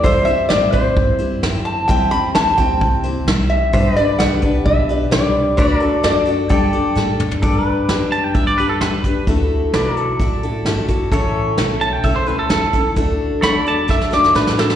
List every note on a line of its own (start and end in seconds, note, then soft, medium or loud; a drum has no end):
0.04 0.49 G2 medium
0.04 0.27 C3 medium
0.04 0.28 E3 medium
0.04 0.28 G3 medium
0.04 0.27 C4 medium
0.04 0.26 E4 medium
0.04 0.28 C5 medium
0.04 3.70 C5 medium
0.04 0.26 C5 medium
0.04 3.70 E5 medium
0.04 kick loud
0.04 open hi-hat medium
0.25 0.50 C4 medium
0.25 0.51 E4 medium
0.25 0.50 C5 medium
0.25 0.50 E5 loud
0.29 0.49 G3 soft
0.49 0.95 A2 medium
0.49 0.74 G3 medium
0.49 0.73 C4 medium
0.49 0.72 E4 medium
0.49 0.72 C5 medium
0.49 0.73 D5 medium
0.49 snare loud
0.72 1.20 G3 soft
0.72 1.19 C4 medium
0.72 1.18 E4 medium
0.72 1.16 C5 medium
0.72 1.17 C5 medium
0.72 kick medium
0.96 1.41 G2 medium
0.96 kick loud
0.96 open hi-hat soft
1.19 1.43 G3 soft
1.19 1.42 C4 medium
1.19 1.42 E4 medium
1.19 1.42 C5 medium
1.43 1.87 F#2 medium
1.43 1.89 C4 medium
1.43 1.89 E4 medium
1.43 1.90 C5 medium
1.43 snare loud
1.43 open hi-hat soft
1.65 1.89 A5 medium
1.88 2.34 E2 medium
1.88 2.12 C3 medium
1.88 2.12 E3 medium
1.88 2.12 G3 medium
1.88 2.12 C4 medium
1.88 2.12 E4 medium
1.88 2.11 C5 medium
1.88 2.10 G5 medium
1.88 kick loud
1.88 open hi-hat medium
2.11 2.34 G3 soft
2.11 2.34 C4 soft
2.11 2.35 E4 medium
2.11 2.35 C5 medium
2.11 2.33 B5 loud
2.35 2.80 D2 medium
2.35 2.58 G3 medium
2.35 2.58 C4 medium
2.35 2.57 E4 medium
2.35 2.56 C5 medium
2.35 2.59 A5 medium
2.35 snare loud
2.35 open hi-hat medium
2.58 3.05 G3 soft
2.58 3.04 C4 medium
2.58 3.03 E4 medium
2.58 3.02 C5 medium
2.58 3.01 G5 medium
2.58 kick medium
2.81 3.26 C2 medium
2.81 kick loud
2.81 open hi-hat medium
3.04 3.27 G3 soft
3.04 3.27 C4 medium
3.04 3.27 E4 medium
3.04 3.27 C5 medium
3.27 3.72 B1 medium
3.27 3.72 G3 medium
3.27 3.74 C4 medium
3.27 3.74 E4 medium
3.27 3.74 C5 medium
3.27 snare loud
3.27 open hi-hat medium
3.50 3.96 E5 loud
3.73 3.95 G1 medium
3.73 3.96 G3 medium
3.73 3.97 D4 medium
3.73 3.97 G4 medium
3.73 3.96 B4 medium
3.73 3.94 C5 medium
3.73 3.99 E5 medium
3.73 kick loud
3.73 open hi-hat medium
3.94 5.56 B4 medium
3.94 4.20 B4 medium
3.94 4.20 D5 medium
3.94 muted upright bass stroke soft
3.98 4.19 D4 soft
3.98 4.20 G4 soft
3.98 5.57 D5 medium
4.19 4.64 C2 medium
4.19 4.43 G3 medium
4.19 4.43 D4 medium
4.19 4.42 G4 medium
4.19 4.41 B4 medium
4.19 4.65 F#5 loud
4.19 snare loud
4.19 open hi-hat medium
4.42 4.91 D4 soft
4.42 4.89 G4 medium
4.42 4.88 B4 medium
4.42 kick medium
4.65 5.10 B1 medium
4.65 5.11 E5 medium
4.65 kick loud
4.65 open hi-hat medium
4.89 5.12 D4 soft
4.89 5.12 G4 medium
4.89 5.12 B4 medium
5.11 5.56 C2 medium
5.11 5.58 G3 medium
5.11 5.59 D4 medium
5.11 5.59 G4 medium
5.11 5.59 B4 medium
5.11 5.56 D5 medium
5.11 snare loud
5.11 open hi-hat soft
5.57 6.03 D2 medium
5.57 5.81 D3 medium
5.57 5.82 A3 medium
5.57 5.81 D4 medium
5.57 5.81 F#4 medium
5.57 5.79 A4 medium
5.57 5.83 B4 medium
5.57 6.03 D5 medium
5.57 6.50 D5 medium
5.57 kick loud
5.57 open hi-hat medium
5.80 6.02 D4 soft
5.80 6.04 F#4 medium
5.80 6.04 A4 medium
5.80 6.49 A4 medium
6.03 6.49 F#2 loud
6.03 6.27 A3 medium
6.03 6.27 D4 medium
6.03 6.26 F#4 medium
6.03 6.24 A4 medium
6.03 6.52 D5 loud
6.03 snare loud
6.03 open hi-hat medium
6.26 6.49 D4 soft
6.26 6.50 F#4 medium
6.26 6.50 A4 medium
6.49 6.72 G2 medium
6.49 6.73 G3 medium
6.49 6.73 D4 medium
6.49 6.72 G4 medium
6.49 7.42 A4 medium
6.49 6.72 A4 medium
6.49 7.42 D5 medium
6.49 7.15 G5 medium
6.49 kick loud
6.49 open hi-hat medium
6.73 6.95 D4 soft
6.73 6.96 G4 soft
6.73 6.96 A4 medium
6.73 muted upright bass stroke soft
6.95 7.41 A2 medium
6.95 7.41 G3 medium
6.95 7.42 D4 medium
6.95 7.42 G4 medium
6.95 7.43 A4 medium
6.95 snare medium
7.20 mid tom loud
7.31 floor tom medium
7.42 7.64 G2 medium
7.42 7.89 G3 medium
7.42 7.89 D4 medium
7.42 7.89 G4 medium
7.42 7.67 A4 medium
7.42 7.89 B4 medium
7.42 9.26 D5 medium
7.42 kick loud
7.42 closed hi-hat medium
7.66 9.25 B4 medium
7.66 muted upright bass stroke soft
7.88 8.34 F#2 medium
7.88 8.35 D4 medium
7.88 8.35 G4 medium
7.88 8.35 B4 medium
7.88 snare loud
7.88 closed hi-hat medium
8.12 8.24 A5 medium
8.12 closed hi-hat medium
8.24 8.35 G5 medium
8.34 8.80 G2 medium
8.34 8.58 G3 medium
8.34 8.58 D4 medium
8.34 8.58 G4 medium
8.34 8.57 B4 medium
8.34 8.46 E5 medium
8.34 kick loud
8.34 closed hi-hat medium
8.47 8.58 D5 medium
8.58 8.81 D4 soft
8.58 8.82 G4 soft
8.58 8.69 B4 medium
8.58 8.82 B4 medium
8.69 8.81 A4 medium
8.81 9.26 E2 medium
8.81 9.04 G3 medium
8.81 9.05 D4 medium
8.81 9.05 G4 medium
8.81 9.26 B4 medium
8.81 9.04 B4 medium
8.81 snare loud
8.81 closed hi-hat medium
9.04 9.28 D4 soft
9.04 9.28 G4 soft
9.04 9.28 B4 medium
9.04 kick medium
9.04 closed hi-hat medium
9.27 9.72 D2 medium
9.27 9.74 D3 medium
9.27 9.74 A3 medium
9.27 9.74 E4 medium
9.27 9.75 F#4 medium
9.27 9.76 A4 medium
9.27 kick loud
9.27 closed hi-hat medium
9.73 10.18 B1 medium
9.73 10.20 A3 medium
9.73 10.20 E4 medium
9.73 10.20 F#4 medium
9.73 10.21 A4 medium
9.73 9.99 B4 medium
9.73 11.12 D5 medium
9.73 snare loud
9.73 closed hi-hat medium
9.97 11.11 A4 medium
9.97 closed hi-hat medium
10.20 10.64 A1 medium
10.20 10.43 A3 medium
10.20 10.43 E4 medium
10.20 10.43 F#4 medium
10.20 10.42 A4 medium
10.20 kick loud
10.20 closed hi-hat medium
10.43 10.66 E4 medium
10.43 10.67 F#4 soft
10.43 10.66 A4 medium
10.65 11.10 G1 medium
10.65 10.90 A3 medium
10.65 10.89 E4 medium
10.65 10.88 F#4 medium
10.65 10.87 A4 medium
10.65 snare loud
10.65 closed hi-hat medium
10.88 11.12 E4 soft
10.88 11.12 F#4 medium
10.88 11.12 A4 medium
10.88 kick medium
10.88 closed hi-hat medium
11.11 11.57 A1 medium
11.11 11.58 A2 medium
11.11 11.59 E3 medium
11.11 11.57 A3 medium
11.11 11.57 C#4 medium
11.11 11.58 E4 medium
11.11 12.95 A4 medium
11.11 11.59 A4 medium
11.11 12.96 C#5 medium
11.11 kick loud
11.11 closed hi-hat medium
11.57 12.03 B1 medium
11.57 12.03 A3 medium
11.57 12.03 C#4 medium
11.57 12.04 E4 medium
11.57 12.05 A4 medium
11.57 snare loud
11.57 closed hi-hat medium
11.81 11.93 A5 loud
11.81 closed hi-hat medium
11.93 12.04 G5 medium
12.03 12.49 C#2 medium
12.03 12.27 A3 medium
12.03 12.27 C#4 medium
12.03 12.27 E4 medium
12.03 12.25 A4 medium
12.03 12.16 E5 medium
12.03 kick loud
12.03 closed hi-hat medium
12.16 12.27 C5 medium
12.27 12.48 A3 soft
12.27 12.49 C#4 soft
12.27 12.50 E4 soft
12.27 12.50 A4 medium
12.27 12.39 B4 medium
12.39 12.50 A4 medium
12.49 12.72 E2 medium
12.49 12.73 A3 medium
12.49 12.74 C#4 medium
12.49 12.73 E4 medium
12.49 12.96 A4 medium
12.49 12.72 A4 medium
12.49 snare loud
12.49 closed hi-hat medium
12.73 12.96 A3 soft
12.73 12.97 C#4 soft
12.73 12.97 E4 soft
12.73 12.97 A4 medium
12.73 muted upright bass stroke soft
12.73 kick medium
12.73 closed hi-hat medium
12.96 13.41 D2 medium
12.96 13.43 D3 medium
12.96 13.41 A3 medium
12.96 13.43 D4 medium
12.96 13.43 F#4 medium
12.96 13.43 A4 medium
12.96 kick loud
12.96 closed hi-hat medium
13.41 13.87 E2 medium
13.41 13.87 A3 medium
13.41 13.88 D4 medium
13.41 13.88 F#4 medium
13.41 14.76 A4 medium
13.41 13.88 A4 medium
13.41 13.62 C#5 medium
13.41 13.66 B5 loud
13.41 snare loud
13.41 closed hi-hat medium
13.62 14.76 D5 medium
13.66 13.89 A5 medium
13.66 closed hi-hat medium
13.88 14.34 F#2 medium
13.88 14.11 A3 medium
13.88 14.11 D4 medium
13.88 14.11 F#4 medium
13.88 14.09 A4 medium
13.88 14.12 E5 medium
13.88 kick loud
13.88 snare medium
14.01 snare medium
14.11 14.34 D4 soft
14.11 14.35 F#4 soft
14.11 14.34 A4 soft
14.11 14.35 D5 medium
14.11 snare medium
14.24 snare medium
14.34 14.76 A2 medium
14.34 14.58 A3 medium
14.34 14.58 D4 medium
14.34 14.57 F#4 medium
14.34 14.56 A4 medium
14.34 14.58 B4 medium
14.34 snare medium
14.47 snare medium
14.57 14.76 D4 soft
14.57 14.76 F#4 soft
14.57 14.76 A4 medium
14.57 snare medium
14.70 snare medium